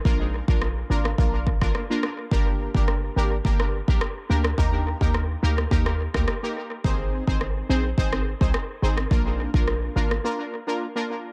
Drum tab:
SD |----r--r---rr-r-|----r----r--r--r|----r--r-r-rr---|----r----r--r--r|
BD |o--o----o-oo----|o--o----o--o----|o--o----o--o----|o--o----o--o----|

SD |----r--r--------|
BD |o--o------------|